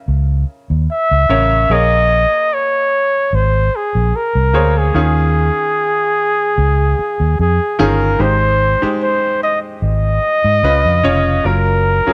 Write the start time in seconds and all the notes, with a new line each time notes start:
Already playing: C#3 C#4 A#4 E5
0.08 C#2
0.70 D#2
0.91 E5
1.11 C#2
1.29 A1 C#3 C#4 A#4 C#5
1.70 A#1 A#3 G#4 A#4 C#5 D#5
2.54 C#5
3.33 G#1 C5
3.76 G#4
3.95 A#1
4.16 A#4
4.35 C2
4.53 D2 A#3 G#4 C5 C#5
4.78 G#4
4.95 D#2 D#3 C#4 F4 G#4
6.58 C#2
6.99 muted fingered electric bass stroke
7.20 D#2
7.39 F2 G#4
7.79 G1 D#3 C#4 F4 G#4 A#4
8.19 G#1 G#3 D#4 G4 C5
8.82 G#3 D#4 G4 C5, muted fingered electric bass stroke
9.02 C5
9.43 D#5
9.82 G#1 D#5
10.44 G#2
10.63 C#2 C#3 C#4 F4 B4
10.85 F2
11.03 F1 C#3 C#4 F4 C#5
11.44 F#1 F#3 C#4 F4 A#4
12.07 F#3 C#4 F4 G#4, muted fingered electric bass stroke